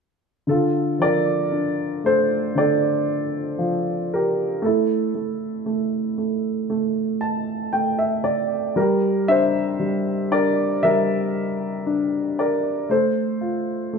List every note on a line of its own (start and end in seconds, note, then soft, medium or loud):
0.47 2.54 D3 soft
0.47 0.98 F4 medium
0.47 1.02 A4 medium
0.99 3.03 F3 soft
0.99 2.08 D5 medium
1.04 2.01 A#4 medium
1.52 3.55 D4 soft
2.04 4.07 A3 soft
2.04 2.54 A4 medium
2.04 2.58 C5 medium
2.55 4.58 D3 soft
2.55 4.17 D5 medium
2.59 4.09 A4 medium
3.59 4.59 F3 soft
4.14 4.61 G4 soft
4.14 4.65 A#4 medium
4.62 5.13 A3 medium
4.62 6.67 A4 medium
4.66 6.67 E4 soft
5.15 5.64 A3 soft
5.66 6.16 A3 soft
6.18 6.68 A3 soft
6.70 7.71 A3 soft
7.21 7.69 A5 medium
7.73 8.73 A3 soft
7.73 7.97 G5 medium
7.99 8.23 E5 medium
8.24 8.72 D5 medium
8.76 9.78 G3 medium
8.76 9.26 G4 medium
8.76 9.30 A#4 medium
9.28 10.30 D4 soft
9.28 10.28 C5 medium
9.28 10.34 E5 medium
9.80 10.83 G3 soft
10.31 11.85 D4 soft
10.31 10.81 A#4 medium
10.31 10.79 D5 medium
10.83 12.86 G3 soft
10.83 12.34 A#4 medium
10.83 12.42 E5 medium
11.86 12.86 D4 soft
12.39 12.87 A#4 soft
12.39 12.86 D5 medium
12.89 13.92 A3 medium
12.89 13.99 A4 soft
12.89 13.99 C5 medium
13.41 13.99 F4 soft
13.93 13.99 A3 soft